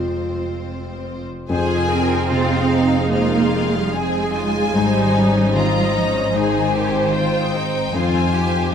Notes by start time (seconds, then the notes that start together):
Already playing: F1 F2 C3 G#3 C4 F4 C5
0.07 C3
0.35 C4
0.93 C5
1.49 F1 F2 D#4 F4 G#4 C5 G#5
1.76 C3
1.90 C4 A#4
2.30 C3 D#4 F4 G#4 F5
2.57 D#4
2.72 D#4
3.11 F2 G#3 A#3 D#4 F4 C5 F5
3.39 C3
3.75 G3
3.93 G#3 C4 G#4 G#5
4.20 D#4
4.35 C#3 F4
4.75 G#1 G#2 G3 D#4 C5
5.01 D#3
5.16 C#4
5.55 D#3 C4 F4 D#5 A#5
5.81 D#4
5.94 F3 C#4 D#4
6.33 G#2 D#3 G#3 D#4 G#4 C5 G#5
6.60 D#3
6.73 C4 G4
7.14 F4 G5
7.41 D#4
7.54 D#4
7.93 F2 F3 C4 D#4 F4 C5 G#5
8.34 F4 G4
8.46 F4